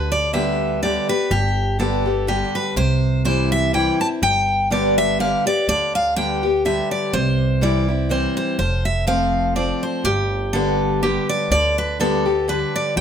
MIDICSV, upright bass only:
0, 0, Header, 1, 2, 480
1, 0, Start_track
1, 0, Tempo, 485830
1, 1292, Time_signature, 3, 2, 24, 8
1, 12851, End_track
2, 0, Start_track
2, 0, Title_t, "Upright bass"
2, 0, Program_c, 0, 32
2, 0, Note_on_c, 0, 38, 89
2, 953, Note_off_c, 0, 38, 0
2, 1291, Note_on_c, 0, 31, 96
2, 2393, Note_off_c, 0, 31, 0
2, 2727, Note_on_c, 0, 36, 83
2, 3830, Note_off_c, 0, 36, 0
2, 4170, Note_on_c, 0, 31, 81
2, 5272, Note_off_c, 0, 31, 0
2, 5609, Note_on_c, 0, 38, 74
2, 6711, Note_off_c, 0, 38, 0
2, 7046, Note_on_c, 0, 36, 92
2, 8150, Note_off_c, 0, 36, 0
2, 8484, Note_on_c, 0, 29, 81
2, 9589, Note_off_c, 0, 29, 0
2, 9922, Note_on_c, 0, 31, 95
2, 11028, Note_off_c, 0, 31, 0
2, 11368, Note_on_c, 0, 38, 90
2, 12471, Note_off_c, 0, 38, 0
2, 12808, Note_on_c, 0, 31, 95
2, 12851, Note_off_c, 0, 31, 0
2, 12851, End_track
0, 0, End_of_file